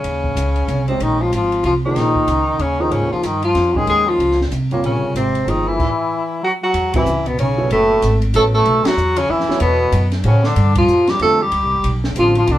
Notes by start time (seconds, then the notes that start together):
Already playing: C#3 C#4
0.04 D#2, ride
0.24 kick
0.36 C#2, hi-hat pedal, ride
0.56 ride
0.67 C2, hi-hat pedal, ride
0.88 C3 G#3 C4 C#4 G4 C5 D#5, ride
1.00 A#1 D#3 D#4, ride
1.21 F3 F4
1.31 G#1 F3 F4, hi-hat pedal, ride
1.52 ride
1.63 C2 F3 F4, ride
1.85 D#3 F3 A#3 D#4 G#4 C5
1.95 A#1, snare, ride
2.16 kick
2.27 C#2, hi-hat pedal, ride
2.59 D#2 C#3 C#4, ride
2.79 D#3 F3 A#3 D#4 G#4 C5
2.91 G#2 C#3 C#4, ride
3.02 D#2
3.12 C#2 F3 F4
3.23 G2 D#3 D#4, hi-hat pedal, ride
3.42 F3 F4, ride
3.55 F2, snare, ride
3.75 D#3 G#3 C#4 G4 G#4 A#4, kick
3.87 D#2 G#3 G#4, ride
4.07 F3 F4
4.18 C#2, ride
4.31 snare
4.41 snare
4.51 C2, hi-hat pedal, ride
4.71 A#2 C3 G3 A#3 F4 A#4 C#5, ride
4.82 A#1 C#3 C#4, ride
5.02 muted upright bass stroke
5.14 G#1 C3 C4, hi-hat pedal, ride
5.35 ride
5.46 G1 D#3 F3 A#3 D#4 G#4 C5, ride
5.67 E3 E4
5.80 kick, crash
6.43 F#3 F#4
6.63 F#3 F#4
6.73 E2, ride
6.94 E3 G3 C4 E4 F#4 B4 E5, kick, ride
7.05 C#2, hi-hat pedal
7.26 B2 B3, ride
7.38 B1 C#3 C#4, ride
7.58 F#3 B3 E4 A4 C#5
7.70 F#1 A2 A3, ride
8.02 G#1, hi-hat pedal, ride
8.22 ride
8.34 A1 F#3 A3 B3 E4 A4 C#5, hi-hat pedal, ride
8.54 A3 A4
8.66 B1, ride
8.85 F#3 F#4, muted upright bass stroke, snare, ride
8.97 E2, hi-hat pedal
9.16 C#3 C#4, ride
9.29 F2 E3 E4
9.40 snare
9.48 F#3 B3 E4 A4 C#5, muted upright bass stroke, snare
9.60 E2 B2 B3, ride
9.92 F#2, hi-hat pedal, ride
10.12 snare, ride
10.24 A2 C#3 A3 C#4 G4 C5 F#5, ride
10.44 D3 D4, snare
10.56 G2, ride
10.75 F3 F4, kick, ride
10.88 F2, hi-hat pedal
11.07 G3 G4, snare, ride
11.19 E2 D3 G3 A3 C4 F4 A4, ride
11.41 G3 G4
11.51 D2, ride
11.62 C2
11.73 G1
11.84 B1, ride
12.04 snare
12.16 A1 D3 F3 G3 C4 F4 A4, hi-hat pedal, ride
12.35 F3 F4, ride
12.47 C2 D3 D4, ride